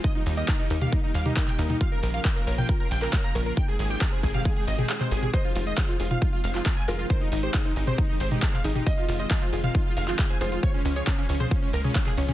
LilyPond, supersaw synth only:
\new Staff \with { instrumentName = "Supersaw synth" } { \time 4/4 \key f \minor \tempo 4 = 136 ees''16 ees'16 ees'16 ees''16 ees'16 ees'16 ees'16 f''16 ees'16 ees'16 f''16 ees'16 ees'16 g''16 ees'16 ees'16 | f''16 bes'16 bes'16 f''16 bes'16 bes'16 bes'16 g''16 bes'16 bes'16 g''16 bes'16 bes'16 bes''16 bes'16 bes'16 | g''16 aes'16 aes'16 g''16 aes'16 aes'16 aes'16 f''16 aes'16 aes'16 ees''16 aes'16 aes'16 c''16 aes'16 aes'16 | ees''16 f'16 f'16 ees''16 f'16 f'16 f'16 f''16 f'16 f'16 f''16 f'16 f'16 aes''16 f'16 f'16 |
c''16 ees'16 ees'16 c''16 ees'16 ees'16 ees'16 c''16 ees'16 ees'16 c''16 ees'16 ees'16 f''16 ees'16 ees'16 | ees''16 f'16 f'16 ees''16 f'16 f'16 f'16 f''16 f'16 f'16 f''16 f'16 f'16 aes''16 f'16 f'16 | des''16 des'16 des'16 des''16 des'16 des'16 des'16 c''16 des'16 des'16 bes'16 des'16 des'16 aes'16 des'16 des'16 | }